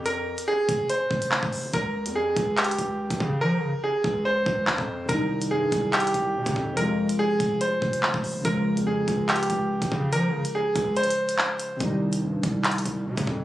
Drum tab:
HH |x--------x--------x-----x--------x--------o-----|x--------x--------x-----x-x-x-x--------x--------|------------------------------------------------|x--------x--------x-----x-x-x-x--------x--------|
CP |------------------------------------x-----------|------------------------x-----------------------|------------------------------------x-----------|------------------------x-----------------------|
BD |------------------o-----------o--------o--------|o-----------------o--------------------o--o-----|------------------o-----------o--------o--------|o-----------------o--------------------o--o-----|

HH |x--------x--------x-----x--------x--------o-----|x--------x--------x-----x-x-x-x--------x--------|x--------x--------x-----x-x-x----x--------x-----|x--------x--------x-----x-x-x-x--------x--------|
CP |------------------------------------x-----------|------------------------x-----------------------|------------------------------------x-----------|------------------------x-----------------------|
BD |------------------o-----------o--------o--------|o-----------------o--------------------o--o-----|------------------o-----------------------------|o-----------------o--------------------o--o-----|